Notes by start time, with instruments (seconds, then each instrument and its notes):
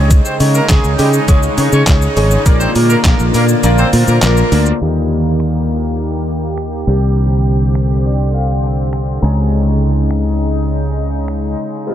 Already playing: fingered electric bass C#2, analog synth pad C#3 G#3 D#4, grand piano G#3 C#4 D#4 G#4 C#5
0.11 kick, closed hi-hat, shaker
0.25 horn section C4 C5, shaker
0.40 fingered electric bass C#3, grand piano G#3 C#4 D#4 G#4 C#5, open hi-hat, shaker
0.55 horn section A#3 A#4, shaker
0.69 fingered electric bass C#2, grand piano G#3 C#4 D#4 G#4 C#5, horn section G#3 G#4, kick, snare, clap, closed hi-hat, shaker
0.84 fingered electric bass C#2, shaker
0.98 fingered electric bass C#3, horn section G3 G4, grand piano G#3 C#4 D#4 G#4 D#5, open hi-hat, shaker
1.13 shaker
1.28 fingered electric bass C#2, grand piano G#3 C#4 D#4 G#4 C#5, horn section G#3 G#4, kick, closed hi-hat, shaker
1.43 shaker
1.57 fingered electric bass C#3, grand piano G#3 C#4 D#4 G#4 C#5, open hi-hat, shaker
1.72 fingered electric bass C#3, horn section C#4 C#5, shaker
1.87 fingered electric bass C#2, grand piano G#3 C#4 D#4 G#4 C#5, kick, snare, clap, closed hi-hat, shaker
2.02 shaker
2.16 fingered electric bass G#1, grand piano G#3 C#4 D#4 G#4 C#5, open hi-hat, shaker
2.31 shaker
2.46 fingered electric bass A#1, analog synth pad D3 A#3 F4, grand piano A#3 D4 F4 A#4 D5, kick, closed hi-hat, shaker
2.61 horn section C4 C5, shaker
2.75 fingered electric bass A#2, grand piano A#3 D4 F4 A#4 D5, open hi-hat, shaker
2.90 horn section A#3 A#4, shaker
3.04 fingered electric bass A#1, grand piano A#3 D4 F4 A#4 D5, horn section A#3 A#4, kick, snare, clap, closed hi-hat, shaker
3.19 fingered electric bass A#1, shaker
3.34 fingered electric bass A#2, grand piano A#3 D4 F4 A#4 D5, horn section A#3 A#4, open hi-hat, shaker
3.49 shaker
3.63 fingered electric bass A#1, grand piano A#3 D4 F4 A#4 D5, closed hi-hat, shaker
3.78 horn section C4 C5, shaker
3.93 fingered electric bass A#2, grand piano A#3 D4 F4 A#4 C5, open hi-hat, shaker
4.08 fingered electric bass A#2, horn section A#3 A#4, shaker
4.22 fingered electric bass A#1, grand piano A#3 D4 F4 A#4 D5, horn section A#3 A#4, snare, clap, closed hi-hat, shaker
4.37 shaker
4.52 fingered electric bass D2, grand piano A#3 D4 F4 A#4 D5, open hi-hat, shaker
4.66 shaker
4.81 fingered electric bass D#2, analog synth pad D#3 A#3 G4, grand piano G3 A#3 D#4 G4
5.40 finger snap
6.58 finger snap
6.87 fingered electric bass C2, analog synth pad D3 C4, grand piano G3 C4 D4 G4
7.75 finger snap
8.05 grand piano D5
8.34 grand piano F5
8.64 grand piano G5
8.93 grand piano G5, finger snap
9.22 fingered electric bass C#2, analog synth pad C#3 G#3 D#4, grand piano G#3 C#4 D#4 G#4 A#5
10.11 finger snap
11.28 finger snap
11.87 analog synth pad F3 C4 F4, grand piano G3 G#3 C4 F4